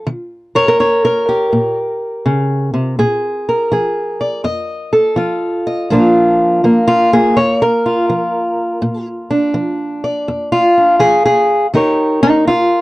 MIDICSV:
0, 0, Header, 1, 2, 480
1, 0, Start_track
1, 0, Tempo, 729927
1, 41, Time_signature, 4, 2, 24, 8
1, 8426, End_track
2, 0, Start_track
2, 0, Title_t, "Steel-string acoustic guitar"
2, 0, Program_c, 0, 25
2, 43, Note_on_c, 0, 51, 76
2, 363, Note_on_c, 0, 70, 53
2, 367, Note_on_c, 0, 73, 98
2, 440, Note_off_c, 0, 70, 0
2, 448, Note_on_c, 0, 70, 85
2, 491, Note_off_c, 0, 51, 0
2, 519, Note_off_c, 0, 73, 0
2, 524, Note_on_c, 0, 63, 61
2, 527, Note_on_c, 0, 73, 76
2, 672, Note_off_c, 0, 70, 0
2, 689, Note_on_c, 0, 70, 88
2, 846, Note_on_c, 0, 67, 49
2, 972, Note_off_c, 0, 63, 0
2, 1003, Note_on_c, 0, 46, 65
2, 1165, Note_off_c, 0, 73, 0
2, 1452, Note_off_c, 0, 46, 0
2, 1483, Note_on_c, 0, 49, 61
2, 1796, Note_off_c, 0, 49, 0
2, 1799, Note_on_c, 0, 48, 58
2, 1946, Note_off_c, 0, 67, 0
2, 1962, Note_off_c, 0, 48, 0
2, 1964, Note_on_c, 0, 46, 74
2, 1967, Note_on_c, 0, 68, 49
2, 2285, Note_off_c, 0, 70, 0
2, 2293, Note_on_c, 0, 70, 44
2, 2413, Note_off_c, 0, 46, 0
2, 2442, Note_off_c, 0, 68, 0
2, 2443, Note_on_c, 0, 53, 60
2, 2450, Note_on_c, 0, 68, 44
2, 2766, Note_on_c, 0, 74, 45
2, 2892, Note_off_c, 0, 53, 0
2, 2906, Note_off_c, 0, 74, 0
2, 2908, Note_off_c, 0, 68, 0
2, 2910, Note_off_c, 0, 70, 0
2, 2920, Note_on_c, 0, 41, 75
2, 2923, Note_on_c, 0, 75, 65
2, 3240, Note_on_c, 0, 69, 56
2, 3370, Note_off_c, 0, 41, 0
2, 3394, Note_on_c, 0, 53, 65
2, 3401, Note_on_c, 0, 65, 56
2, 3719, Note_off_c, 0, 75, 0
2, 3727, Note_on_c, 0, 75, 54
2, 3847, Note_off_c, 0, 53, 0
2, 3863, Note_off_c, 0, 69, 0
2, 3864, Note_off_c, 0, 65, 0
2, 3867, Note_off_c, 0, 75, 0
2, 3882, Note_on_c, 0, 46, 76
2, 3887, Note_on_c, 0, 53, 51
2, 3892, Note_on_c, 0, 58, 48
2, 3895, Note_on_c, 0, 62, 44
2, 3901, Note_on_c, 0, 65, 52
2, 4331, Note_off_c, 0, 46, 0
2, 4363, Note_off_c, 0, 53, 0
2, 4366, Note_on_c, 0, 53, 59
2, 4367, Note_off_c, 0, 58, 0
2, 4369, Note_on_c, 0, 58, 47
2, 4519, Note_off_c, 0, 65, 0
2, 4521, Note_on_c, 0, 65, 100
2, 4683, Note_off_c, 0, 65, 0
2, 4686, Note_off_c, 0, 58, 0
2, 4687, Note_off_c, 0, 62, 0
2, 4689, Note_on_c, 0, 58, 40
2, 4690, Note_on_c, 0, 68, 84
2, 4813, Note_off_c, 0, 53, 0
2, 4844, Note_on_c, 0, 41, 65
2, 4844, Note_on_c, 0, 73, 84
2, 4847, Note_off_c, 0, 68, 0
2, 5003, Note_off_c, 0, 73, 0
2, 5010, Note_on_c, 0, 70, 85
2, 5167, Note_on_c, 0, 65, 45
2, 5292, Note_off_c, 0, 41, 0
2, 5323, Note_on_c, 0, 53, 57
2, 5771, Note_off_c, 0, 53, 0
2, 5799, Note_on_c, 0, 46, 77
2, 5966, Note_off_c, 0, 70, 0
2, 6119, Note_on_c, 0, 62, 51
2, 6249, Note_off_c, 0, 46, 0
2, 6274, Note_on_c, 0, 53, 63
2, 6599, Note_off_c, 0, 65, 0
2, 6602, Note_on_c, 0, 74, 50
2, 6726, Note_off_c, 0, 53, 0
2, 6762, Note_on_c, 0, 41, 70
2, 6916, Note_off_c, 0, 74, 0
2, 6919, Note_on_c, 0, 65, 76
2, 7078, Note_off_c, 0, 62, 0
2, 7086, Note_on_c, 0, 62, 41
2, 7209, Note_off_c, 0, 41, 0
2, 7230, Note_on_c, 0, 53, 66
2, 7231, Note_off_c, 0, 62, 0
2, 7234, Note_on_c, 0, 68, 91
2, 7240, Note_off_c, 0, 65, 0
2, 7393, Note_off_c, 0, 68, 0
2, 7401, Note_on_c, 0, 68, 84
2, 7667, Note_off_c, 0, 68, 0
2, 7683, Note_off_c, 0, 53, 0
2, 7717, Note_on_c, 0, 51, 76
2, 7723, Note_off_c, 0, 58, 0
2, 7723, Note_on_c, 0, 63, 54
2, 7726, Note_on_c, 0, 67, 50
2, 7730, Note_on_c, 0, 70, 53
2, 7737, Note_on_c, 0, 73, 53
2, 8033, Note_off_c, 0, 63, 0
2, 8040, Note_on_c, 0, 63, 107
2, 8047, Note_off_c, 0, 70, 0
2, 8049, Note_on_c, 0, 70, 44
2, 8167, Note_off_c, 0, 51, 0
2, 8200, Note_off_c, 0, 63, 0
2, 8201, Note_off_c, 0, 73, 0
2, 8203, Note_on_c, 0, 65, 100
2, 8207, Note_on_c, 0, 63, 61
2, 8426, Note_off_c, 0, 63, 0
2, 8426, Note_off_c, 0, 65, 0
2, 8426, Note_off_c, 0, 67, 0
2, 8426, Note_off_c, 0, 70, 0
2, 8426, End_track
0, 0, End_of_file